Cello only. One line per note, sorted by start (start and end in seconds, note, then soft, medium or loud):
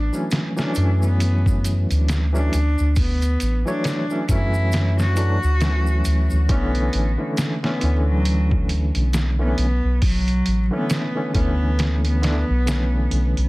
0.60 0.98 D4 medium
1.04 1.60 B3 medium
2.36 2.92 D4 medium
2.98 3.59 B3 loud
3.69 4.25 D4 medium
4.30 4.92 E4 medium
5.00 6.36 F#4 loud
6.52 7.13 B3 loud
7.65 8.03 B3 medium
8.09 8.65 F#3 loud
9.42 9.98 B3 loud
10.05 10.66 F#3 loud
10.74 11.30 B3 medium
11.36 11.98 B3 loud
12.06 13.41 B3 loud